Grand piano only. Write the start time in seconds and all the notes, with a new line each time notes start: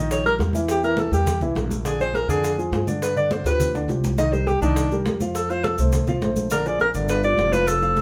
Already playing: D#3 D#4 D#5
0.25 G3 G4 A#4
0.39 G3 G4 A#4
0.54 E3 E4 E5
0.83 E3 E4 E5
1.12 G3 G4 A#4
1.42 E3 E4 E5
1.56 G3 G4 A#4
1.85 D3 D4 D5
2.00 F3 F4 G#4
2.29 D3 D4 D5
2.58 F3 F4 G#4
2.72 F3 F4 G#4
2.87 D3 D4 D5
3.16 D3 D4 D5
3.46 F3 F4 G4
3.74 D3 D4 D5
3.89 F3 F4 G4
4.18 D#3 D#4 D#5
4.33 G3 G4 A#4
4.62 D#3 D#4 D#5
4.92 G3 G4 A#4
5.07 G3 G4 A#4
5.21 F3 F4 F5
5.50 F3 F4 F5
5.79 A3 A4 C5
6.08 F3 F4 F5
6.22 A3 A4 C5
6.51 D3 D4 D5
6.65 F3 F4 G#4
6.95 D3 D4 D5
7.24 F3 F4 G4
7.39 F3 F4 G4
7.53 F3 F4 F5
7.82 F3 F4 F5